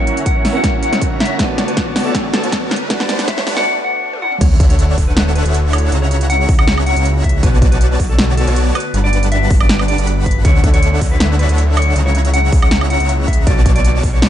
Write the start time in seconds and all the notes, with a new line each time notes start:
Already playing: C#3 F#3 A#3 C#4 E4 F#4 A#4 C#5 E5 F#5 A#5, riser
0.00 C#5
0.07 closed hi-hat
0.17 closed hi-hat
0.26 F#5, kick, closed hi-hat
0.45 C#4 C#5 E5 F#5 A#5, snare, open hi-hat
0.53 A#3 C#4 E4 F#4 F#5
0.64 kick, snare, closed hi-hat
0.83 F#5, closed hi-hat
0.93 C#4 C#5 E5 F#5 A#5, snare, closed hi-hat
1.01 kick, closed hi-hat
1.20 E5, snare, closed hi-hat
1.25 closed hi-hat
1.37 D3 A3 B3 D4 F#4 B4 C#5 D5 A5, kick, snare, closed hi-hat
1.58 snare, closed hi-hat
1.68 B4, closed hi-hat
1.77 kick, snare, closed hi-hat
1.96 B3 F#4 C#5 D5 A5, snare, open hi-hat
2.04 A3 D4 F#4 A4
2.15 kick, snare, closed hi-hat
2.34 A4, snare, closed hi-hat
2.44 B3 F#4 C#5 D5 A5, closed hi-hat
2.52 kick, snare, closed hi-hat
2.71 B4, snare, closed hi-hat
2.76 closed hi-hat
2.88 G3 A3 B3 D4 F#4 B4 F#5 A5, kick, snare, closed hi-hat
3.00 D5, snare
3.09 snare, closed hi-hat
3.19 snare, closed hi-hat
3.28 E5, kick, snare, closed hi-hat
3.38 snare
3.47 G3 D4 B4 F#5 A5, snare, open hi-hat
3.55 A3 B3 D4 F#4 F#5, snare
3.66 swell
3.84 F#5
4.13 high tom
4.22 F#5, mid tom
4.32 mid tom
4.41 D2 D3 D4 E4 F#4 A4 C#5 E5 F#5, kick, closed hi-hat, crash, sub drop
4.60 kick, closed hi-hat
4.70 C#5, closed hi-hat
4.79 closed hi-hat
4.98 D2 D4 A4 C#5 E5 F#5, kick, open hi-hat
5.08 B4
5.17 snare, closed hi-hat
5.35 B4, closed hi-hat
5.45 D2 D4 A4 C#5 E5 F#5, closed hi-hat
5.54 closed hi-hat
5.73 C#5, closed hi-hat, high woodblock
5.78 closed hi-hat
5.92 C#2 C#3 A#3 C#4 C#5 E5 F#5 A#5, closed hi-hat
6.02 C#5
6.11 closed hi-hat
6.21 closed hi-hat
6.30 F#5, closed hi-hat
6.49 C#2 C#4 C#5 E5 F#5 A#5, kick, open hi-hat
6.59 F#5, high woodblock
6.68 snare, closed hi-hat
6.78 high woodblock
6.86 F#5, closed hi-hat
6.96 C#2 C#4 C#5 E5 F#5 A#5, closed hi-hat
7.05 closed hi-hat
7.24 E5, kick, closed hi-hat
7.29 closed hi-hat
7.43 B1 D3 A3 B3 F#4 B4 C#5 D5 A5, kick, closed hi-hat
7.62 kick, closed hi-hat
7.72 B4, closed hi-hat
7.81 closed hi-hat
8.00 B1 B3 F#4 C#5 D5 A5, kick, open hi-hat
8.09 A4
8.19 snare, closed hi-hat
8.37 A4, closed hi-hat
8.47 B1 B3 F#4 C#5 D5 A5, closed hi-hat
8.56 closed hi-hat
8.75 G3 B4, closed hi-hat, high woodblock
8.80 closed hi-hat
8.94 G1 G3 D4 B4 F#5 A5, closed hi-hat
9.04 D5
9.13 closed hi-hat
9.23 closed hi-hat
9.32 E5, closed hi-hat
9.50 G1 G3 D4 B4 F#5 A5, kick, open hi-hat
9.61 D5, high woodblock
9.69 snare, closed hi-hat
9.79 high woodblock
9.88 D5, closed hi-hat
9.98 G1 G3 D4 B4 F#5 B5, closed hi-hat
10.07 closed hi-hat
10.26 B4, kick, closed hi-hat
10.31 closed hi-hat
10.45 D2 D3 F#3 D4 E4 A4 C#5 E5 F#5, kick, closed hi-hat
10.64 kick, closed hi-hat
10.74 C#5, closed hi-hat
10.82 closed hi-hat
11.01 D2 D4 A4 C#5 E5 F#5, kick, open hi-hat
11.12 B4
11.20 snare, closed hi-hat
11.39 B4, closed hi-hat
11.49 D2 D4 A4 C#5 E5 F#5, closed hi-hat
11.58 closed hi-hat
11.77 C#5, closed hi-hat, high woodblock
11.82 closed hi-hat
11.96 C#2 C#3 F#3 A#3 C#4 C#5 E5 F#5 A#5, closed hi-hat
12.06 C#5
12.15 closed hi-hat
12.25 closed hi-hat
12.34 F#5, closed hi-hat
12.52 C#2 C#4 C#5 E5 F#5 A#5, kick, open hi-hat
12.62 F#5, high woodblock
12.71 snare, closed hi-hat
12.81 high woodblock
12.90 F#5, closed hi-hat
13.00 C#2 C#4 C#5 E5 F#5 A#5, closed hi-hat
13.09 closed hi-hat
13.28 E5, kick, closed hi-hat
13.33 closed hi-hat
13.47 B1 D3 A3 B3 F#4 C#5 D5 A5, kick, closed hi-hat
13.66 kick, closed hi-hat
13.76 D5, closed hi-hat
13.85 closed hi-hat
14.03 B1 B3 F#4 C#5 D5 A5, kick, open hi-hat
14.13 C#5
14.22 snare, closed hi-hat